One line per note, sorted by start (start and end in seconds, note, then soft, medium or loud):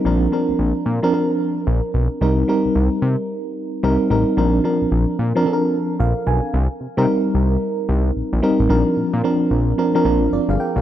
0.05 0.27 A#1 loud
0.05 0.27 F3 loud
0.05 0.27 C4 medium
0.05 0.27 D4 medium
0.05 0.27 A#4 loud
0.32 0.82 F3 medium
0.32 0.82 C4 medium
0.32 0.83 D4 medium
0.32 0.83 A#4 loud
0.49 0.53 A#1 soft
0.59 0.73 A#1 medium
0.86 1.00 A#2 medium
1.03 1.10 F3 loud
1.03 1.10 C4 loud
1.03 1.10 D4 loud
1.03 1.11 A#4 loud
1.13 1.92 F3 medium
1.13 1.92 C4 medium
1.13 1.92 D4 medium
1.13 1.93 A#4 medium
1.67 1.81 A#1 loud
1.94 2.08 B1 medium
2.21 2.43 C2 loud
2.21 2.43 G3 medium
2.21 2.43 C4 medium
2.21 2.43 D#4 medium
2.21 2.43 A#4 medium
2.48 3.27 G3 medium
2.48 3.27 C4 medium
2.48 3.28 D#4 medium
2.48 3.28 A#4 loud
2.65 2.69 C2 medium
2.75 2.89 C2 medium
3.02 3.16 C3 medium
3.83 3.97 C2 loud
3.83 4.05 G3 loud
3.83 4.05 C4 medium
3.83 4.05 D#4 medium
3.83 4.05 A#4 loud
4.10 4.24 A1 medium
4.10 4.32 G3 medium
4.10 4.32 C4 medium
4.10 4.32 D#4 medium
4.10 4.32 A#4 loud
4.37 4.60 A#1 loud
4.37 4.59 F3 medium
4.37 4.59 C4 medium
4.37 4.59 D4 medium
4.37 4.59 A#4 loud
4.64 5.14 F3 medium
4.64 5.15 C4 medium
4.64 5.15 D4 medium
4.64 5.15 A#4 medium
4.81 4.85 A#1 soft
4.91 5.05 A#1 loud
5.19 5.33 A#2 medium
5.35 5.43 F3 loud
5.35 5.43 C4 medium
5.35 5.43 D4 medium
5.35 5.43 A#4 loud
5.45 6.25 F3 medium
5.45 6.25 C4 medium
5.45 6.25 D4 medium
5.45 5.54 A4 medium
5.53 6.28 A#4 loud
6.00 6.14 A#1 loud
6.00 6.25 F5 medium
6.27 6.41 B1 loud
6.27 6.52 G#5 medium
6.54 6.68 C2 loud
6.81 6.87 C3 soft
6.97 7.06 C3 medium
6.97 7.75 G3 loud
6.97 7.75 C4 medium
6.97 7.76 D#4 medium
6.97 7.76 A#4 loud
7.35 7.57 C2 medium
7.89 8.11 C2 loud
8.16 8.23 A#1 medium
8.33 8.41 A#1 loud
8.42 8.64 G3 loud
8.42 8.64 C4 medium
8.42 8.64 D#4 medium
8.42 8.65 A#4 loud
8.60 8.68 A1 loud
8.69 8.84 A#1 loud
8.69 9.12 F3 medium
8.69 9.12 C4 medium
8.69 9.12 D4 medium
8.69 9.12 A#4 loud
8.97 9.03 A#2 soft
9.13 9.22 A#2 loud
9.24 9.66 F3 medium
9.24 9.66 C4 medium
9.24 9.66 D4 medium
9.24 9.67 A#4 medium
9.51 9.73 A#1 medium
9.78 9.90 F3 medium
9.78 9.90 C4 medium
9.78 9.90 D4 medium
9.78 9.91 A#4 loud
9.95 10.02 F3 loud
9.95 10.02 C4 medium
9.95 10.02 D4 medium
9.95 10.02 A#4 loud
10.05 10.27 A#1 loud
10.05 10.35 F3 medium
10.05 10.35 C4 medium
10.05 10.35 D4 medium
10.05 10.32 A#4 loud
10.32 10.39 G1 medium
10.32 10.49 F4 medium
10.32 10.48 D5 medium
10.49 10.57 G1 loud
10.49 10.59 G#4 medium
10.49 10.59 F5 medium
10.60 10.76 A#4 medium
10.60 10.75 G5 medium
10.76 10.81 B1 loud
10.76 10.81 G#4 medium
10.76 10.81 F5 medium